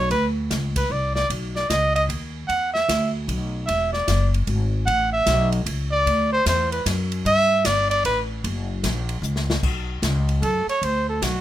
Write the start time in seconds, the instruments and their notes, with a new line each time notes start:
0.10 upright bass D2, trumpet B4, kick, ride
0.50 upright bass C#2, kick, snare, hi-hat pedal, ride
0.76 trumpet B4, kick, ride
0.90 upright bass C2, trumpet D5, kick
1.15 trumpet D5, snare
1.30 upright bass B1, kick, ride
1.56 trumpet D5, snare
1.69 upright bass C#2, trumpet D#5, kick, snare, hi-hat pedal, ride
1.96 trumpet D#5, ride
2.09 upright bass D#2, kick, ride
2.48 upright bass E2, trumpet F#5, kick, ride
2.73 trumpet E5, snare
2.88 upright bass D2, kick, snare, hi-hat pedal, ride
3.28 upright bass B1, kick, ride
3.66 upright bass E1, trumpet E5, kick, ride
3.93 trumpet D5, snare
4.08 upright bass F#1, kick, snare, hi-hat pedal, ride
4.34 ride
4.47 upright bass G#1, kick, ride
4.86 upright bass A1, trumpet F#5, kick, ride
5.12 trumpet E5
5.26 upright bass B1, kick, snare, hi-hat pedal, ride
5.52 ride
5.66 upright bass C#2, kick, ride
5.92 trumpet D5
6.06 upright bass D2, kick, ride
6.33 trumpet C5
6.46 upright bass E2, trumpet C5, kick, snare, hi-hat pedal, ride
6.72 trumpet B4, ride
6.86 upright bass F#2, kick, snare, hi-hat pedal, ride
7.12 ride
7.25 upright bass G2, trumpet E5, kick, ride
7.65 upright bass G1, trumpet D5, kick, snare, hi-hat pedal, ride
7.90 trumpet D5, ride
8.05 upright bass A1, trumpet B4, kick, ride
8.44 upright bass F#1, kick, ride
8.83 upright bass A#1, kick, snare, hi-hat pedal, ride
9.09 ride
9.22 upright bass C#2, hi-hat pedal
9.36 snare
9.50 snare
9.63 upright bass B1, kick, crash
10.02 upright bass C#2, kick, snare, hi-hat pedal, ride
10.29 ride
10.42 upright bass F#2, trumpet A4, kick, ride
10.66 trumpet C#5, muted upright bass stroke, ride
10.82 upright bass D2, trumpet C5, kick, ride
11.09 trumpet A4
11.22 upright bass B1, trumpet F#4, kick, snare, hi-hat pedal, ride